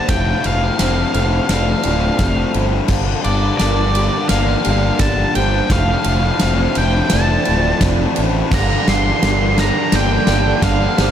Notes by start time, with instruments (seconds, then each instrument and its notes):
Already playing: clean electric guitar G3 A#3 D4 G4, string section D4, vibraphone C5
0.02 distorted electric guitar G2 D3
0.08 fingered electric bass F1, distorted electric guitar D2 A2, clean electric guitar D2, string section F3 F4 C5, vibraphone F5, lead electric guitar G5, kick, snare, ride
0.16 distorted electric guitar D2 A2
0.23 distorted electric guitar D2 A2
0.32 distorted electric guitar D2 A2
0.39 distorted electric guitar D2 A2
0.44 fingered electric bass F1, distorted electric guitar D2 A2, lead electric guitar F5, ride
0.54 distorted electric guitar D2 A2
0.62 distorted electric guitar D2 A2
0.70 distorted electric guitar D2 A2
0.77 fingered electric bass F1, distorted electric guitar D2 A2, clean electric guitar C4, vibraphone C5, snare, ride
0.85 distorted electric guitar D2 A2
0.92 distorted electric guitar D2 A2
0.99 distorted electric guitar D2 A2
1.07 distorted electric guitar D2 A2
1.14 fingered electric bass F1, distorted electric guitar D2 A2, clean electric guitar D3, ride
1.23 distorted electric guitar D2 A2
1.30 distorted electric guitar D2 A2
1.38 distorted electric guitar D2 A2
1.46 fingered electric bass F1, distorted electric guitar D2 A2, vibraphone D5, snare, ride
1.50 distorted electric guitar D2 A2, clean electric guitar A3, lead electric guitar F5
1.61 distorted electric guitar D2 A2
1.69 distorted electric guitar D2 A2
1.76 distorted electric guitar D2 A2
1.83 fingered electric bass D1, distorted electric guitar D2 A2, clean electric guitar F4, vibraphone D5, ride
1.92 distorted electric guitar D2 A2
1.98 distorted electric guitar D2 A2
2.06 distorted electric guitar D2 A2
2.14 distorted electric guitar D2 A2
2.19 fingered electric bass F1, distorted electric guitar D2, clean electric guitar C4, kick, snare, ride
2.23 distorted electric guitar A2
2.29 distorted electric guitar D2 A2
2.36 distorted electric guitar D2 A2
2.45 distorted electric guitar D2 A2
2.53 fingered electric bass G1, distorted electric guitar D2 A2, clean electric guitar D3, vibraphone C5, ride
2.60 distorted electric guitar D2 A2
2.68 distorted electric guitar D2 A2
2.75 distorted electric guitar D2 A2
2.82 distorted electric guitar D2 A2
2.88 fingered electric bass G1, distorted electric guitar G2 D3, clean electric guitar G2, string section G3 D4 F4 A#4, vibraphone F5, kick, snare, crash
2.99 distorted electric guitar G2 D3
3.05 distorted electric guitar G2 D3
3.13 distorted electric guitar G2 D3
3.21 distorted electric guitar G2 D3, lead electric guitar D5, ride
3.26 fingered electric bass G1, distorted electric guitar G2
3.30 distorted electric guitar D3
3.35 distorted electric guitar G2 D3
3.43 distorted electric guitar G2 D3
3.52 distorted electric guitar G2 D3
3.57 fingered electric bass G1, distorted electric guitar G2 D3, clean electric guitar D4, vibraphone A#4, lead electric guitar D5, snare, ride
3.65 distorted electric guitar G2 D3
3.74 distorted electric guitar G2 D3
3.82 distorted electric guitar G2 D3
3.89 distorted electric guitar G2 D3
3.95 distorted electric guitar G2, clean electric guitar G3, ride
3.99 distorted electric guitar D3
4.04 distorted electric guitar G2 D3
4.12 distorted electric guitar G2 D3
4.19 distorted electric guitar G2 D3
4.26 distorted electric guitar G2, clean electric guitar A#3, lead electric guitar F5, snare, ride
4.31 fingered electric bass G1, distorted electric guitar D3, vibraphone D5
4.35 distorted electric guitar G2
4.40 distorted electric guitar G2 D3
4.46 distorted electric guitar G2 D3
4.55 distorted electric guitar G2 D3
4.61 distorted electric guitar G2 D3, clean electric guitar G4, ride
4.66 fingered electric bass G1, vibraphone D5
4.71 distorted electric guitar G2 D3
4.78 distorted electric guitar G2 D3
4.85 distorted electric guitar G2 D3
4.94 distorted electric guitar G2 D3
4.99 fingered electric bass G1, distorted electric guitar G2 D3, clean electric guitar D4, lead electric guitar A5, kick, snare, ride
5.10 distorted electric guitar G2 D3
5.17 distorted electric guitar G2 D3
5.25 distorted electric guitar G2 D3
5.32 distorted electric guitar G2 D3, clean electric guitar G3, vibraphone C5, lead electric guitar G5, ride
5.36 fingered electric bass G1, distorted electric guitar D3
5.41 distorted electric guitar G2
5.49 distorted electric guitar G2 D3
5.56 distorted electric guitar G2 D3
5.64 distorted electric guitar G2 D3
5.70 fingered electric bass F1, distorted electric guitar D2 A2, clean electric guitar D2, string section F3 F4 C5, vibraphone F5, lead electric guitar F5, kick, snare, ride
5.78 distorted electric guitar D2 A2
5.85 distorted electric guitar D2 A2
5.92 distorted electric guitar D2 A2
6.00 distorted electric guitar D2 A2
6.04 fingered electric bass F1, distorted electric guitar D2, ride
6.09 distorted electric guitar A2
6.14 distorted electric guitar D2 A2
6.24 distorted electric guitar D2 A2
6.30 distorted electric guitar D2 A2
6.38 distorted electric guitar D2 A2, clean electric guitar C4, vibraphone C5, snare, ride
6.42 fingered electric bass F1, distorted electric guitar A2
6.47 distorted electric guitar D2
6.53 distorted electric guitar D2 A2
6.61 distorted electric guitar D2 A2
6.70 distorted electric guitar D2 A2
6.75 fingered electric bass F1, distorted electric guitar D2 A2, clean electric guitar D3, lead electric guitar G5, ride
6.85 distorted electric guitar D2 A2
6.91 distorted electric guitar D2 A2
6.99 distorted electric guitar D2 A2
7.07 distorted electric guitar D2 A2, snare, ride
7.12 fingered electric bass F1, distorted electric guitar D2 A2, clean electric guitar A3, vibraphone D5, lead electric guitar A5
7.22 distorted electric guitar D2 A2
7.30 distorted electric guitar D2 A2
7.38 distorted electric guitar D2 A2
7.45 fingered electric bass D1, distorted electric guitar D2 A2, clean electric guitar F4, vibraphone D5, ride
7.52 distorted electric guitar D2 A2
7.58 distorted electric guitar D2 A2
7.68 distorted electric guitar D2 A2
7.75 distorted electric guitar D2 A2
7.81 fingered electric bass F1, distorted electric guitar D2 A2, clean electric guitar C4, kick, snare, ride
7.90 distorted electric guitar D2 A2
7.98 distorted electric guitar D2 A2
8.06 distorted electric guitar D2 A2
8.13 distorted electric guitar D2 A2, clean electric guitar D3, ride
8.17 fingered electric bass A1, distorted electric guitar D2, vibraphone C5
8.22 distorted electric guitar A2
8.28 distorted electric guitar D2 A2
8.36 distorted electric guitar D2 A2
8.43 distorted electric guitar D2 A2
8.51 fingered electric bass G1, distorted electric guitar G2 D3, clean electric guitar G2, string section G3 F4 A#4, vibraphone F5, lead electric guitar A#5, kick, snare, crash
8.58 distorted electric guitar G2 D3
8.66 distorted electric guitar G2 D3
8.74 distorted electric guitar G2 D3
8.81 distorted electric guitar G2 D3
8.88 fingered electric bass G1, distorted electric guitar G2 D3, lead electric guitar C6, snare, ride
8.96 distorted electric guitar G2 D3
9.05 distorted electric guitar G2 D3
9.11 distorted electric guitar G2 D3
9.17 distorted electric guitar G2, overdriven electric guitar D3
9.21 fingered electric bass G1, distorted electric guitar D3, clean electric guitar D4, vibraphone A#4, snare, ride
9.26 distorted electric guitar G2 D3
9.34 distorted electric guitar G2 D3
9.41 distorted electric guitar G2 D3
9.50 distorted electric guitar G2 D3
9.57 distorted electric guitar G2 D3, clean electric guitar G3, lead electric guitar A#5, snare, ride
9.65 distorted electric guitar G2 D3
9.73 distorted electric guitar G2 D3
9.80 distorted electric guitar G2 D3
9.88 distorted electric guitar G2 D3
9.92 fingered electric bass G1, distorted electric guitar G2, clean electric guitar A#3, vibraphone D5, lead electric guitar G5, snare, ride
9.97 distorted electric guitar D3
10.02 distorted electric guitar G2 D3
10.11 distorted electric guitar G2 D3
10.18 distorted electric guitar G2 D3
10.26 fingered electric bass G1, distorted electric guitar G2 D3, clean electric guitar G4, vibraphone D5, snare, ride
10.33 distorted electric guitar G2 D3
10.41 distorted electric guitar G2 D3
10.48 distorted electric guitar G2 D3
10.56 distorted electric guitar G2 D3
10.62 fingered electric bass G1, distorted electric guitar G2 D3, clean electric guitar D4, lead electric guitar F5, kick, snare, ride
10.70 distorted electric guitar G2 D3
10.79 distorted electric guitar G2 D3
10.86 distorted electric guitar G2 D3
10.94 distorted electric guitar G2 D3, vibraphone C5, snare, ride
10.99 fingered electric bass G1, distorted electric guitar G2 D3, clean electric guitar G3